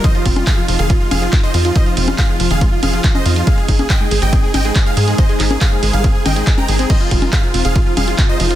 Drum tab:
CC |----------------|----------------|----------------|----------------|
RD |x-x-x-x-x-x-x-x-|x-x-x-x-x-x-x-x-|x-x-x-x-x-x-x-x-|x-x-x-x-x-x-x-x-|
HH |xxoxx-oxx-oxxxox|xxoxx-oxx-oxxxox|xxoxx-oxx-oxxxox|xxo-x-oxx-oxxxox|
CP |----x-------x---|----x-------x---|----x-------x---|--x-x-------x---|
CG |---o------o-----|---o------o--o--|---o------o-----|---o------o--o--|
BD |o-o-o---o---o---|o---o---o---o---|o-o-o---o---o---|o---o---o---o---|

CC |x---------------|
RD |x-x-x-x-x-x-x-x-|
HH |xxoxxxoxx-oxx-ox|
CP |----x-------x---|
CG |---o------o-----|
BD |o-o-o---o---o---|